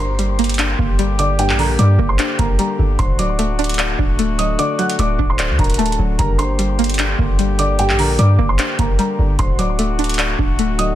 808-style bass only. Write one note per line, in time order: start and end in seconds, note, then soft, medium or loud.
0.00 0.75 G1 loud
0.79 1.51 G1 loud
1.50 1.77 A#1 loud
1.79 1.98 G2 loud
1.99 2.18 G1 loud
2.39 2.58 G1 loud
2.79 2.98 G1 loud
2.99 3.95 D1 loud
3.99 4.56 D1 loud
4.99 5.18 D1 loud
5.19 5.51 D1 loud
5.50 5.58 D2 loud
5.59 5.97 D1 loud
5.99 6.18 D1 loud
6.19 7.15 G1 loud
7.19 7.91 G1 loud
7.89 8.17 A#1 loud
8.19 8.38 G2 loud
8.39 8.58 G1 loud
8.79 8.98 G1 loud
9.19 9.38 G1 loud
9.39 10.35 D1 loud
10.39 10.95 D1 loud